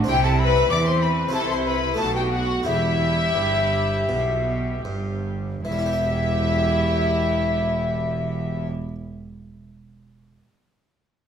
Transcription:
0.04 0.69 C2 loud
0.04 1.27 C4 medium
0.04 1.28 E4 medium
0.08 0.69 C3 loud
0.08 0.66 C3 medium
0.08 0.71 E4 medium
0.08 0.23 G4 loud
0.08 0.22 G5 loud
0.08 0.23 G5 loud
0.23 0.30 A4 medium
0.23 0.39 A5 loud
0.23 0.41 A5 medium
0.39 0.70 B4 loud
0.39 0.70 B5 loud
0.39 0.69 B5 loud
0.70 1.32 E2 medium
0.70 1.32 E3 medium
0.70 1.30 E3 medium
0.70 1.34 C4 medium
0.70 0.77 D5 loud
0.70 0.85 D6 loud
0.70 0.86 D6 loud
0.86 1.02 C5 medium
0.86 1.04 C6 medium
0.86 1.02 C6 loud
1.01 1.34 B4 loud
1.01 1.09 B5 loud
1.01 1.34 B5 loud
1.29 1.94 C4 medium
1.29 1.95 E4 medium
1.29 1.96 F#4 medium
1.33 1.97 C2 medium
1.33 1.94 C3 medium
1.33 1.97 C3 medium
1.33 1.98 E4 medium
1.33 1.49 A4 loud
1.33 1.49 A5 loud
1.33 1.41 A5 loud
1.50 1.66 C5 loud
1.50 1.66 C6 medium
1.50 1.57 C6 loud
1.66 1.99 B4 medium
1.66 1.98 B5 loud
1.66 1.74 B5 loud
1.94 2.62 A3 medium
1.94 2.63 D#4 medium
1.94 2.64 F#4 medium
1.94 2.15 A4 medium
1.94 2.04 A5 loud
1.98 2.65 B1 medium
1.98 2.65 B2 medium
1.98 2.62 B2 medium
1.98 2.67 F#4 medium
1.98 2.15 A5 loud
2.15 2.32 G4 medium
2.15 2.22 G5 medium
2.15 2.32 G5 medium
2.32 2.65 F#4 medium
2.32 2.39 F#5 medium
2.32 2.66 F#5 loud
2.63 3.35 E1 medium
2.63 3.35 E2 medium
2.63 3.33 E2 medium
2.63 5.60 E4 medium
2.63 4.81 E4 loud
2.63 5.60 G4 medium
2.63 5.35 G4 medium
2.63 4.81 E5 loud
2.63 4.82 E5 loud
3.35 4.08 G1 medium
3.35 4.05 G2 medium
3.35 4.08 G2 medium
4.09 4.84 B1 medium
4.09 4.81 B2 medium
4.09 4.84 B2 medium
4.85 5.64 G1 medium
4.85 5.63 G2 medium
4.85 5.61 G2 medium
5.64 8.67 E1 medium
5.64 8.67 E2 medium
5.64 8.67 E3 medium
5.64 8.67 E4 medium
5.64 8.67 G4 medium
5.64 8.67 E5 loud
5.64 8.67 E5 medium
5.72 8.74 G3 medium
5.79 8.81 E4 medium
5.86 8.88 G4 medium
5.93 8.95 E5 medium

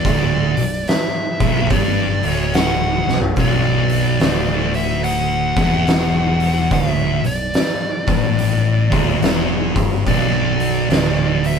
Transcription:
0.00 0.90 D5 medium
0.05 0.54 D1 medium
0.05 0.56 D2 loud
0.05 kick loud
0.05 open hi-hat medium
0.57 0.85 B0 medium
0.57 0.82 B1 medium
0.57 open hi-hat medium
0.88 1.74 E5 medium
0.88 snare loud
0.88 open hi-hat medium
1.40 1.69 B0 medium
1.40 1.70 B1 loud
1.40 kick loud
1.40 open hi-hat medium
1.70 2.19 G1 medium
1.70 2.22 G2 loud
1.70 2.29 D5 medium
1.70 kick loud
1.70 open hi-hat medium
2.23 3.03 D1 medium
2.23 3.05 D2 loud
2.23 open hi-hat medium
2.29 2.57 C#5 medium
2.54 3.18 F#5 medium
2.54 snare loud
2.54 open hi-hat medium
3.06 3.35 B0 medium
3.06 3.31 B1 medium
3.06 snare medium
3.22 floor tom medium
3.36 4.16 B0 medium
3.36 4.19 B1 loud
3.36 4.79 D5 medium
3.36 kick loud
3.36 open hi-hat medium
3.89 open hi-hat medium
4.20 5.53 D1 medium
4.20 5.55 D2 loud
4.20 snare loud
4.20 open hi-hat medium
4.74 5.04 E5 medium
4.74 open hi-hat medium
5.04 6.73 F#5 medium
5.04 open hi-hat medium
5.56 6.67 E1 medium
5.56 6.70 E2 loud
5.56 kick loud
5.56 open hi-hat medium
5.87 snare loud
5.87 open hi-hat medium
6.40 open hi-hat medium
6.71 7.20 D1 medium
6.71 7.22 D2 loud
6.71 6.91 F5 medium
6.71 kick loud
6.71 open hi-hat medium
6.91 7.22 E5 medium
7.22 7.53 B0 medium
7.22 7.48 B1 medium
7.22 open hi-hat medium
7.26 9.73 D5 medium
7.54 snare loud
7.54 open hi-hat medium
8.07 8.88 A1 medium
8.07 8.90 A2 loud
8.07 kick loud
8.07 open hi-hat medium
8.39 open hi-hat medium
8.90 9.20 D1 loud
8.90 9.21 D2 loud
8.90 kick loud
8.90 open hi-hat medium
9.21 9.72 E1 medium
9.21 9.74 E2 loud
9.21 snare loud
9.21 open hi-hat medium
9.75 10.05 G1 medium
9.75 10.05 G2 loud
9.75 kick loud
9.75 open hi-hat medium
10.06 10.86 B0 medium
10.06 10.89 B1 loud
10.06 11.48 D5 medium
10.06 kick medium
10.06 open hi-hat medium
10.60 open hi-hat medium
10.89 11.59 D1 medium
10.89 11.59 D2 loud
10.89 snare loud
10.89 open hi-hat medium
11.44 11.59 E5 loud
11.44 open hi-hat medium

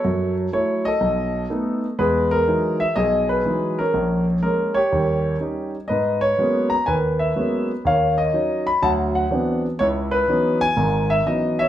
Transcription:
0.00 0.83 A4 medium
0.00 0.34 C#5 medium
0.05 0.47 F#2 medium
0.05 0.47 F#3 medium
0.53 0.87 F#3 medium
0.53 0.87 A3 soft
0.53 0.87 E4 medium
0.53 0.87 C#5 medium
0.85 1.80 A4 medium
0.85 1.46 D#5 loud
1.01 1.44 B1 medium
1.50 1.85 A3 medium
1.50 1.85 B3 soft
1.50 1.85 D#4 medium
1.99 2.41 E2 medium
1.99 2.41 G#3 medium
1.99 2.93 G#4 medium
1.99 2.33 B4 medium
2.31 2.77 A#4 loud
2.47 2.82 E3 medium
2.47 2.82 F#3 soft
2.47 2.82 G#3 soft
2.47 2.82 D#4 medium
2.80 2.95 E5 medium
2.96 3.39 B1 medium
2.96 3.91 G#4 medium
2.96 3.27 D#5 loud
3.29 3.80 B4 medium
3.45 3.80 E3 medium
3.45 3.80 F#3 soft
3.45 3.80 G#3 soft
3.45 3.80 D#4 medium
3.79 4.42 C#4 medium
3.79 4.24 A#4 medium
3.94 4.37 A#1 medium
4.43 4.77 G#3 medium
4.43 4.77 A#3 soft
4.43 4.78 C#4 medium
4.43 4.77 A#4 medium
4.74 5.70 G4 medium
4.74 5.36 C#5 loud
4.92 5.34 D#2 medium
4.92 5.35 G3 medium
5.40 5.75 G3 soft
5.40 5.75 C#4 soft
5.40 5.75 D#4 medium
5.88 6.32 G#2 medium
5.88 6.83 B4 medium
5.88 6.19 D#5 medium
6.21 6.67 C#5 loud
6.38 6.72 F#3 soft
6.38 6.73 G#3 soft
6.38 6.73 A#3 soft
6.38 6.73 B3 soft
6.38 6.73 C#4 medium
6.70 6.87 A#5 medium
6.86 7.30 D#2 medium
6.86 7.81 B4 medium
6.86 6.94 G#5 medium
7.19 7.65 E5 medium
7.36 7.70 F#3 soft
7.36 7.70 G#3 soft
7.36 7.70 A#3 soft
7.36 7.70 B3 soft
7.36 7.70 C#4 medium
7.85 8.27 D#2 medium
7.85 8.79 C#5 medium
7.85 8.19 F5 medium
8.18 8.68 D#5 medium
8.33 8.68 F#3 medium
8.33 8.68 C#4 soft
8.33 8.68 D#4 medium
8.67 8.83 B5 medium
8.82 9.25 D2 medium
8.82 9.25 F#3 medium
8.82 9.14 F#5 medium
8.82 8.90 A5 loud
9.15 9.61 F#5 medium
9.31 9.65 E3 medium
9.31 9.65 F#3 soft
9.31 9.65 B3 soft
9.31 9.66 C4 soft
9.31 9.66 D4 medium
9.79 10.22 C#2 medium
9.79 10.74 E4 medium
9.79 9.87 C#5 loud
10.11 10.57 B4 medium
10.28 10.63 E3 medium
10.28 10.63 F#3 soft
10.28 10.63 B3 medium
10.28 10.63 C#4 medium
10.28 10.63 D#4 medium
10.61 11.12 G#5 loud
10.77 11.19 G#1 medium
10.77 11.20 G#2 medium
11.10 11.27 E5 medium
11.26 11.61 E3 medium
11.26 11.61 F#3 soft
11.26 11.61 B3 soft
11.26 11.61 C#4 soft
11.26 11.61 D#4 medium
11.26 11.60 D#5 medium
11.59 11.69 C#5 medium
11.59 11.69 E5 loud

